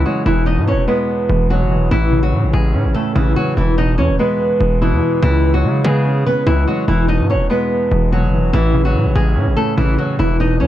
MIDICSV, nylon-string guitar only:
0, 0, Header, 1, 2, 480
1, 0, Start_track
1, 0, Tempo, 413793
1, 300, Time_signature, 4, 2, 24, 8
1, 12378, End_track
2, 0, Start_track
2, 0, Title_t, "Nylon-string guitar"
2, 0, Program_c, 0, 24
2, 63, Note_on_c, 0, 66, 78
2, 73, Note_on_c, 0, 54, 57
2, 257, Note_off_c, 0, 66, 0
2, 263, Note_off_c, 0, 54, 0
2, 300, Note_on_c, 0, 64, 86
2, 309, Note_on_c, 0, 52, 69
2, 495, Note_off_c, 0, 64, 0
2, 500, Note_off_c, 0, 52, 0
2, 534, Note_on_c, 0, 63, 86
2, 544, Note_on_c, 0, 75, 72
2, 732, Note_off_c, 0, 63, 0
2, 737, Note_off_c, 0, 75, 0
2, 783, Note_on_c, 0, 61, 87
2, 792, Note_on_c, 0, 73, 67
2, 977, Note_off_c, 0, 61, 0
2, 982, Note_off_c, 0, 73, 0
2, 1016, Note_on_c, 0, 59, 73
2, 1025, Note_on_c, 0, 71, 57
2, 1695, Note_off_c, 0, 59, 0
2, 1700, Note_off_c, 0, 71, 0
2, 1743, Note_on_c, 0, 66, 78
2, 1752, Note_on_c, 0, 54, 60
2, 2193, Note_off_c, 0, 66, 0
2, 2198, Note_off_c, 0, 54, 0
2, 2218, Note_on_c, 0, 64, 108
2, 2227, Note_on_c, 0, 52, 78
2, 2564, Note_off_c, 0, 64, 0
2, 2569, Note_off_c, 0, 52, 0
2, 2584, Note_on_c, 0, 66, 92
2, 2593, Note_on_c, 0, 54, 61
2, 2917, Note_off_c, 0, 66, 0
2, 2922, Note_off_c, 0, 54, 0
2, 2937, Note_on_c, 0, 68, 82
2, 2947, Note_on_c, 0, 56, 59
2, 3390, Note_off_c, 0, 68, 0
2, 3395, Note_off_c, 0, 56, 0
2, 3416, Note_on_c, 0, 69, 88
2, 3425, Note_on_c, 0, 57, 63
2, 3612, Note_off_c, 0, 69, 0
2, 3618, Note_off_c, 0, 57, 0
2, 3661, Note_on_c, 0, 64, 84
2, 3670, Note_on_c, 0, 52, 62
2, 3856, Note_off_c, 0, 64, 0
2, 3861, Note_off_c, 0, 52, 0
2, 3901, Note_on_c, 0, 66, 81
2, 3910, Note_on_c, 0, 54, 64
2, 4096, Note_off_c, 0, 66, 0
2, 4101, Note_off_c, 0, 54, 0
2, 4144, Note_on_c, 0, 64, 82
2, 4153, Note_on_c, 0, 52, 70
2, 4338, Note_off_c, 0, 64, 0
2, 4343, Note_off_c, 0, 52, 0
2, 4382, Note_on_c, 0, 63, 93
2, 4392, Note_on_c, 0, 75, 68
2, 4576, Note_off_c, 0, 63, 0
2, 4582, Note_off_c, 0, 75, 0
2, 4615, Note_on_c, 0, 61, 82
2, 4625, Note_on_c, 0, 73, 64
2, 4812, Note_off_c, 0, 61, 0
2, 4818, Note_off_c, 0, 73, 0
2, 4861, Note_on_c, 0, 59, 73
2, 4870, Note_on_c, 0, 71, 56
2, 5537, Note_off_c, 0, 59, 0
2, 5542, Note_off_c, 0, 71, 0
2, 5587, Note_on_c, 0, 64, 75
2, 5596, Note_on_c, 0, 52, 58
2, 6035, Note_off_c, 0, 64, 0
2, 6040, Note_off_c, 0, 52, 0
2, 6061, Note_on_c, 0, 64, 106
2, 6070, Note_on_c, 0, 52, 80
2, 6406, Note_off_c, 0, 64, 0
2, 6411, Note_off_c, 0, 52, 0
2, 6424, Note_on_c, 0, 66, 87
2, 6434, Note_on_c, 0, 54, 66
2, 6757, Note_off_c, 0, 66, 0
2, 6762, Note_off_c, 0, 54, 0
2, 6787, Note_on_c, 0, 68, 76
2, 6797, Note_on_c, 0, 56, 63
2, 7235, Note_off_c, 0, 68, 0
2, 7240, Note_off_c, 0, 56, 0
2, 7266, Note_on_c, 0, 71, 78
2, 7276, Note_on_c, 0, 59, 65
2, 7459, Note_off_c, 0, 71, 0
2, 7464, Note_off_c, 0, 59, 0
2, 7501, Note_on_c, 0, 64, 87
2, 7510, Note_on_c, 0, 52, 66
2, 7695, Note_off_c, 0, 64, 0
2, 7701, Note_off_c, 0, 52, 0
2, 7743, Note_on_c, 0, 66, 78
2, 7753, Note_on_c, 0, 54, 57
2, 7937, Note_off_c, 0, 66, 0
2, 7943, Note_off_c, 0, 54, 0
2, 7980, Note_on_c, 0, 64, 88
2, 7990, Note_on_c, 0, 52, 69
2, 8175, Note_off_c, 0, 64, 0
2, 8181, Note_off_c, 0, 52, 0
2, 8216, Note_on_c, 0, 63, 87
2, 8225, Note_on_c, 0, 75, 69
2, 8412, Note_off_c, 0, 63, 0
2, 8418, Note_off_c, 0, 75, 0
2, 8465, Note_on_c, 0, 61, 82
2, 8474, Note_on_c, 0, 73, 66
2, 8658, Note_off_c, 0, 61, 0
2, 8663, Note_off_c, 0, 73, 0
2, 8698, Note_on_c, 0, 59, 71
2, 8707, Note_on_c, 0, 71, 57
2, 9376, Note_off_c, 0, 59, 0
2, 9381, Note_off_c, 0, 71, 0
2, 9424, Note_on_c, 0, 66, 76
2, 9433, Note_on_c, 0, 54, 58
2, 9873, Note_off_c, 0, 66, 0
2, 9878, Note_off_c, 0, 54, 0
2, 9898, Note_on_c, 0, 64, 102
2, 9908, Note_on_c, 0, 52, 81
2, 10245, Note_off_c, 0, 64, 0
2, 10250, Note_off_c, 0, 52, 0
2, 10264, Note_on_c, 0, 66, 91
2, 10273, Note_on_c, 0, 54, 61
2, 10597, Note_off_c, 0, 66, 0
2, 10602, Note_off_c, 0, 54, 0
2, 10618, Note_on_c, 0, 68, 80
2, 10628, Note_on_c, 0, 56, 58
2, 11070, Note_off_c, 0, 68, 0
2, 11075, Note_off_c, 0, 56, 0
2, 11096, Note_on_c, 0, 69, 86
2, 11105, Note_on_c, 0, 57, 61
2, 11292, Note_off_c, 0, 69, 0
2, 11298, Note_off_c, 0, 57, 0
2, 11341, Note_on_c, 0, 64, 86
2, 11350, Note_on_c, 0, 52, 66
2, 11535, Note_off_c, 0, 64, 0
2, 11541, Note_off_c, 0, 52, 0
2, 11582, Note_on_c, 0, 66, 77
2, 11591, Note_on_c, 0, 54, 64
2, 11776, Note_off_c, 0, 66, 0
2, 11781, Note_off_c, 0, 54, 0
2, 11825, Note_on_c, 0, 64, 84
2, 11834, Note_on_c, 0, 52, 69
2, 12018, Note_off_c, 0, 64, 0
2, 12023, Note_off_c, 0, 52, 0
2, 12063, Note_on_c, 0, 63, 93
2, 12072, Note_on_c, 0, 75, 70
2, 12257, Note_off_c, 0, 63, 0
2, 12262, Note_off_c, 0, 75, 0
2, 12296, Note_on_c, 0, 61, 85
2, 12305, Note_on_c, 0, 73, 64
2, 12378, Note_off_c, 0, 61, 0
2, 12378, Note_off_c, 0, 73, 0
2, 12378, End_track
0, 0, End_of_file